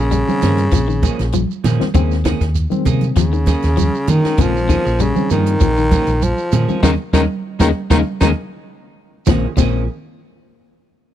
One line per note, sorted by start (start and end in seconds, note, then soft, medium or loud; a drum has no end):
0.00 0.22 A#1 medium
0.00 1.51 C#3 medium
0.00 0.16 A#3 soft
0.00 0.15 C#4 soft
0.00 0.15 G#4 medium
0.11 0.28 G3 medium
0.11 closed hi-hat medium
0.11 high conga soft
0.11 shekere medium
0.29 0.95 D#3 medium
0.29 0.95 C4 medium
0.29 0.95 G#4 medium
0.29 high conga medium
0.29 shekere soft
0.42 0.67 G2 medium
0.42 0.61 F3 medium
0.42 0.61 A#3 medium
0.42 0.61 C#4 medium
0.42 0.62 G#4 medium
0.42 snare soft
0.42 closed hi-hat medium
0.42 low conga medium
0.42 shekere medium
0.57 closed hi-hat medium
0.57 shekere soft
0.71 1.10 A#1 medium
0.71 0.81 F3 medium
0.71 kick medium
0.71 snare soft
0.71 closed hi-hat medium
0.71 shekere medium
0.88 1.05 D#3 medium
0.88 shekere soft
1.02 1.22 F3 medium
1.02 1.22 A#3 medium
1.02 1.22 C#4 medium
1.02 1.22 G#4 medium
1.02 kick medium
1.02 closed hi-hat soft
1.02 high conga medium
1.02 shekere medium
1.19 1.44 A#1 medium
1.19 snare soft
1.19 closed hi-hat soft
1.19 shekere soft
1.32 1.50 F3 medium
1.32 closed hi-hat medium
1.32 high conga medium
1.32 shekere medium
1.51 shekere soft
1.64 1.78 A#2 medium
1.64 1.83 F3 medium
1.64 1.83 A#3 medium
1.64 1.84 C#4 medium
1.64 1.84 G#4 medium
1.64 snare soft
1.64 closed hi-hat medium
1.64 high conga loud
1.64 low conga medium
1.64 shekere medium
1.80 1.88 D#3 medium
1.80 1.88 G#3 medium
1.80 1.89 C4 medium
1.80 muted fingered electric bass stroke soft
1.80 snare soft
1.80 high conga medium
1.80 shekere soft
1.94 2.32 D#2 loud
1.94 2.12 C#3 medium
1.94 2.37 D#3 medium
1.94 2.37 G#3 medium
1.94 2.13 A#3 medium
1.94 2.38 C4 loud
1.94 2.14 C#4 medium
1.94 2.14 G#4 medium
1.94 kick medium
1.94 closed hi-hat medium
1.94 shekere medium
2.11 snare soft
2.11 shekere soft
2.25 2.42 D#3 medium
2.25 2.44 A#3 medium
2.25 2.44 C#4 medium
2.25 2.45 G#4 medium
2.25 kick medium
2.25 snare medium
2.25 closed hi-hat medium
2.25 low conga medium
2.25 shekere medium
2.41 2.66 D#2 medium
2.41 kick medium
2.41 snare soft
2.41 closed hi-hat medium
2.41 shekere soft
2.55 closed hi-hat medium
2.55 high conga soft
2.55 shekere medium
2.70 3.38 D#3 medium
2.70 3.39 G#3 medium
2.70 3.39 C4 medium
2.70 high conga medium
2.70 shekere soft
2.85 3.11 C3 medium
2.85 3.05 A#3 medium
2.85 3.05 C#4 medium
2.85 3.06 G#4 medium
2.85 kick medium
2.85 closed hi-hat medium
2.85 low conga medium
2.85 shekere medium
3.01 closed hi-hat medium
3.01 high conga medium
3.01 shekere soft
3.16 3.54 D#2 medium
3.16 4.11 C#3 medium
3.16 3.26 F3 medium
3.16 kick medium
3.16 snare soft
3.16 closed hi-hat medium
3.16 shekere medium
3.33 3.50 D#3 medium
3.33 shekere soft
3.46 3.66 A#3 medium
3.46 3.66 C#4 medium
3.46 3.67 G#4 medium
3.46 kick medium
3.46 snare soft
3.46 closed hi-hat medium
3.46 high conga medium
3.46 shekere medium
3.62 3.88 D#2 medium
3.62 snare soft
3.62 closed hi-hat medium
3.62 shekere soft
3.77 3.94 F3 medium
3.77 closed hi-hat medium
3.77 high conga medium
3.77 shekere medium
3.95 shekere soft
4.07 4.21 D#3 medium
4.07 4.43 D#3 medium
4.07 4.24 A#3 medium
4.07 4.25 C#4 medium
4.07 4.24 G#4 medium
4.07 closed hi-hat medium
4.07 high conga medium
4.07 low conga medium
4.07 shekere medium
4.24 4.33 D#3 medium
4.24 4.33 G#3 medium
4.24 4.33 C#4 medium
4.24 4.38 C#4 soft
4.24 4.38 G#4 medium
4.24 muted fingered electric bass stroke soft
4.24 snare soft
4.24 shekere soft
4.38 4.76 A#1 medium
4.38 4.56 C#3 loud
4.38 4.82 D#3 medium
4.38 4.58 F3 medium
4.38 4.82 G#3 medium
4.38 4.58 A#3 medium
4.38 4.82 C4 medium
4.38 4.58 C#4 medium
4.38 4.58 G#4 medium
4.38 kick medium
4.38 closed hi-hat medium
4.38 high conga soft
4.38 shekere medium
4.42 5.03 F3 loud
4.57 shekere soft
4.68 4.86 D#3 medium
4.68 4.85 F3 medium
4.68 4.85 A#3 medium
4.68 4.84 C#4 medium
4.68 4.83 G#4 medium
4.68 kick medium
4.68 closed hi-hat soft
4.68 shekere medium
4.85 5.10 A#1 medium
4.85 5.03 A#3 soft
4.85 5.03 C#4 soft
4.85 5.03 G#4 medium
4.85 shekere soft
5.00 5.31 C#3 medium
5.00 5.17 G3 medium
5.00 closed hi-hat medium
5.00 high conga soft
5.00 shekere loud
5.15 5.83 D#3 medium
5.15 5.83 C4 medium
5.15 5.83 G#4 medium
5.15 high conga medium
5.15 shekere soft
5.30 5.55 G2 medium
5.30 6.25 D#3 loud
5.30 5.49 F3 medium
5.30 5.50 A#3 medium
5.30 5.50 C#4 medium
5.30 5.50 G#4 medium
5.30 closed hi-hat soft
5.30 low conga medium
5.30 shekere medium
5.46 closed hi-hat medium
5.46 shekere soft
5.60 5.98 A#1 medium
5.60 5.70 F3 medium
5.60 kick medium
5.60 closed hi-hat medium
5.60 high conga soft
5.60 shekere medium
5.77 5.94 D#3 medium
5.77 shekere soft
5.91 6.10 F3 medium
5.91 6.10 A#3 medium
5.91 6.11 C#4 medium
5.91 6.11 G#4 medium
5.91 kick medium
5.91 closed hi-hat soft
5.91 high conga medium
5.91 shekere medium
6.07 6.32 A#1 medium
6.07 closed hi-hat medium
6.07 shekere soft
6.22 6.82 F3 medium
6.22 closed hi-hat medium
6.22 high conga medium
6.22 shekere medium
6.38 shekere soft
6.52 6.65 A#2 medium
6.52 6.68 F3 medium
6.52 6.69 A#3 medium
6.52 6.68 C#4 medium
6.52 6.67 G#4 medium
6.52 closed hi-hat medium
6.52 high conga loud
6.52 low conga medium
6.52 shekere medium
6.68 6.77 D#3 medium
6.68 6.77 G#3 medium
6.68 6.82 A#3 soft
6.68 6.77 C4 medium
6.68 6.82 C#4 soft
6.68 6.83 G#4 medium
6.68 muted fingered electric bass stroke soft
6.68 high conga medium
6.68 shekere soft
6.83 6.95 D#2 medium
6.83 6.93 C#3 loud
6.83 6.90 D#3 loud
6.83 6.93 D#3 loud
6.83 6.94 D#3 medium
6.83 6.94 G#3 medium
6.83 6.93 G#3 medium
6.83 6.93 A#3 loud
6.83 6.94 A#3 loud
6.83 6.94 C#4 medium
6.83 6.93 D#4 medium
6.83 kick medium
6.83 snare medium
6.83 high conga loud
6.83 shekere loud
7.13 7.25 D#2 loud
7.13 7.24 C#3 medium
7.13 7.22 D#3 medium
7.13 7.24 D#3 medium
7.13 7.24 G#3 medium
7.13 7.24 G#3 loud
7.13 7.24 A#3 medium
7.13 7.25 A#3 medium
7.13 7.24 C#4 loud
7.13 7.24 D#4 medium
7.13 kick medium
7.13 snare medium
7.13 high conga loud
7.13 shekere medium
7.59 7.71 D#2 loud
7.59 7.70 C#3 medium
7.59 7.69 D#3 medium
7.59 7.67 D#3 loud
7.59 7.70 D#3 medium
7.59 7.69 G#3 medium
7.59 7.70 G#3 medium
7.59 7.69 A#3 medium
7.59 7.70 A#3 medium
7.59 7.69 C#4 medium
7.59 7.69 D#4 medium
7.59 kick medium
7.59 snare medium
7.59 high conga loud
7.59 shekere loud
7.90 8.02 D#2 medium
7.90 8.00 C#3 loud
7.90 7.98 D#3 medium
7.90 8.00 D#3 loud
7.90 8.00 G#3 loud
7.90 8.00 A#3 medium
7.90 8.00 A#3 loud
7.90 8.00 C#4 medium
7.90 8.00 D#4 loud
7.90 kick medium
7.90 snare medium
7.90 high conga loud
7.90 shekere loud
8.21 8.32 D#2 loud
8.21 8.30 C#3 medium
8.21 8.28 D#3 medium
8.21 8.30 D#3 medium
8.21 8.31 D#3 loud
8.21 8.31 G#3 medium
8.21 8.31 G#3 loud
8.21 8.30 A#3 medium
8.21 8.31 A#3 loud
8.21 8.31 C#4 medium
8.21 8.30 D#4 loud
8.21 kick medium
8.21 snare medium
8.21 high conga loud
8.21 shekere medium
9.26 9.45 A#1 medium
9.26 9.38 A#2 medium
9.26 9.45 D#3 medium
9.26 9.46 F3 medium
9.26 9.45 G#3 medium
9.26 9.46 A#3 medium
9.26 9.45 C4 medium
9.26 9.47 C#4 medium
9.26 9.47 G#4 medium
9.26 kick medium
9.26 snare medium
9.26 low conga loud
9.26 shekere medium
9.57 9.86 A#1 medium
9.57 9.76 A#2 medium
9.57 9.86 D#3 medium
9.57 9.82 F3 medium
9.57 9.86 G#3 medium
9.57 9.83 A#3 medium
9.57 9.86 C4 medium
9.57 9.83 C#4 medium
9.57 9.84 G#4 medium
9.57 kick medium
9.57 crash medium
9.57 low conga medium
9.57 shekere loud